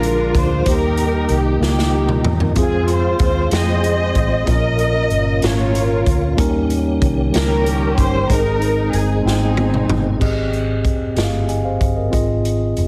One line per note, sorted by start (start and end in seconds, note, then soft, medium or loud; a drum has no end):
0.00 0.31 A#1 loud
0.00 0.63 A#2 medium
0.00 0.66 D3 medium
0.00 0.66 F3 medium
0.00 0.52 G#3 medium
0.00 0.67 G#3 medium
0.00 0.53 A#3 medium
0.00 0.66 A#3 medium
0.00 0.53 D4 medium
0.00 0.64 D4 medium
0.00 0.54 F4 medium
0.00 0.63 F4 medium
0.00 0.66 F4 medium
0.00 0.32 A#4 loud
0.00 0.54 A#4 medium
0.00 closed hi-hat medium
0.35 0.64 D2 medium
0.35 0.68 C5 medium
0.35 kick medium
0.35 closed hi-hat medium
0.65 1.26 D#2 loud
0.65 1.58 D#3 medium
0.65 2.53 G3 medium
0.65 1.48 A#3 medium
0.65 2.53 A#3 medium
0.65 1.48 D#4 medium
0.65 2.54 D#4 medium
0.65 1.59 D#4 medium
0.65 1.32 G4 medium
0.65 1.49 G4 medium
0.65 1.31 A#4 loud
0.65 kick medium
0.65 closed hi-hat medium
0.97 closed hi-hat soft
1.29 1.59 C2 loud
1.29 closed hi-hat soft
1.33 1.63 G4 medium
1.60 2.21 C#2 medium
1.60 2.43 A#3 medium
1.60 2.44 D#4 medium
1.60 2.44 F4 medium
1.60 snare medium
1.64 2.54 A#3 medium
1.64 2.54 D#4 medium
1.64 2.31 G4 medium
1.79 snare medium
2.09 mid tom medium
2.24 2.54 E2 medium
2.24 mid tom loud
2.40 floor tom loud
2.55 3.16 F2 loud
2.55 4.44 G#3 medium
2.55 3.38 C4 medium
2.55 4.44 C4 medium
2.55 2.64 E4 medium
2.55 3.38 F4 medium
2.55 3.39 G#4 medium
2.55 kick medium
2.55 closed hi-hat medium
2.59 3.50 C4 medium
2.59 3.50 F4 medium
2.59 4.47 F4 medium
2.59 2.89 G#4 medium
2.88 closed hi-hat soft
2.93 3.23 C5 medium
3.19 3.49 D#2 medium
3.19 kick medium
3.19 closed hi-hat soft
3.25 3.52 C5 loud
3.51 4.11 F2 medium
3.51 4.33 C4 medium
3.51 4.34 F4 medium
3.51 4.45 G#4 medium
3.51 4.35 G5 medium
3.51 snare loud
3.51 closed hi-hat medium
3.55 4.45 C5 medium
3.55 4.50 D#5 loud
3.84 closed hi-hat medium
4.15 4.45 A1 medium
4.15 kick medium
4.15 closed hi-hat medium
4.46 5.07 A#1 loud
4.46 5.39 A#2 medium
4.46 6.34 A#3 medium
4.46 4.53 C4 medium
4.46 6.34 C#4 medium
4.46 4.53 E4 soft
4.46 5.29 F4 medium
4.46 5.30 A#4 medium
4.46 kick medium
4.46 closed hi-hat medium
4.50 5.32 C#4 medium
4.50 6.37 F4 medium
4.50 5.40 A#4 medium
4.50 5.41 D#5 loud
4.79 closed hi-hat soft
5.10 5.40 G1 medium
5.10 closed hi-hat soft
5.42 6.03 G#1 loud
5.42 6.24 C#4 medium
5.42 6.25 F4 medium
5.42 6.26 C#5 medium
5.42 snare loud
5.42 closed hi-hat medium
5.46 6.36 F4 medium
5.46 6.36 A#4 medium
5.46 6.16 C#5 medium
5.75 closed hi-hat medium
6.06 6.36 D2 medium
6.06 kick medium
6.06 closed hi-hat medium
6.37 6.98 D#2 loud
6.37 8.25 D#3 medium
6.37 7.30 D#3 medium
6.37 7.19 G3 medium
6.37 8.25 G3 medium
6.37 8.25 A#3 medium
6.37 7.20 A#3 medium
6.37 7.20 C#4 medium
6.37 8.26 C#4 medium
6.37 7.21 D#4 medium
6.37 8.25 G4 medium
6.37 7.21 A#4 loud
6.37 kick loud
6.37 closed hi-hat medium
6.70 closed hi-hat medium
7.02 7.31 C2 medium
7.02 kick medium
7.02 closed hi-hat soft
7.32 7.94 C#2 medium
7.32 8.15 G3 medium
7.32 8.15 A#3 medium
7.32 8.16 C#4 medium
7.32 8.16 D#4 medium
7.32 7.94 A#4 loud
7.32 8.17 A#4 medium
7.32 closed hi-hat medium
7.36 8.26 C#4 medium
7.36 8.27 G4 medium
7.36 snare loud
7.66 closed hi-hat medium
7.98 8.27 G1 medium
7.98 8.27 C5 loud
7.98 kick medium
7.98 closed hi-hat medium
8.28 8.89 G#1 loud
8.28 10.17 G#3 medium
8.28 9.21 G#3 medium
8.28 10.16 C4 medium
8.28 9.11 C4 medium
8.28 8.35 D4 medium
8.28 9.11 D#4 medium
8.28 9.12 G#4 medium
8.28 8.93 A#4 loud
8.28 kick loud
8.28 closed hi-hat medium
8.32 9.22 D#4 medium
8.32 10.20 D#4 medium
8.62 closed hi-hat soft
8.93 9.23 G1 medium
8.93 9.24 G#4 medium
8.93 closed hi-hat soft
9.22 9.85 G#1 loud
9.22 9.30 B3 medium
9.22 10.07 D#4 medium
9.22 9.93 G#4 medium
9.22 10.08 G5 medium
9.27 10.18 C4 medium
9.27 10.09 C4 medium
9.27 10.18 D#4 medium
9.27 snare medium
9.57 high tom medium
9.74 mid tom medium
9.88 10.18 G1 medium
9.88 mid tom loud
10.19 10.85 G#1 medium
10.19 11.12 G#2 medium
10.19 11.02 C4 medium
10.19 11.03 G4 medium
10.19 11.03 G#4 medium
10.19 11.04 D#5 medium
10.19 kick medium
10.19 crash medium
10.53 closed hi-hat soft
10.85 11.14 F1 medium
10.85 kick medium
10.85 closed hi-hat soft
11.14 11.76 G1 medium
11.14 11.98 C4 medium
11.14 11.98 G4 soft
11.14 11.99 G#4 medium
11.14 11.24 D#5 soft
11.14 closed hi-hat medium
11.18 snare medium
11.24 11.52 F5 medium
11.49 11.64 D#5 soft
11.49 11.64 G#5 medium
11.49 closed hi-hat soft
11.64 11.95 C5 soft
11.64 11.95 F5 medium
11.81 12.10 G1 medium
11.81 kick medium
11.81 closed hi-hat soft
11.96 12.27 A#4 soft
11.96 12.13 D#5 medium
12.10 12.73 G#1 medium
12.10 12.88 G#2 medium
12.10 12.88 C4 medium
12.10 12.88 F4 medium
12.10 12.88 G#4 medium
12.10 12.88 D#5 medium
12.10 kick medium
12.10 closed hi-hat medium
12.45 closed hi-hat soft
12.77 12.88 F1 medium
12.77 closed hi-hat soft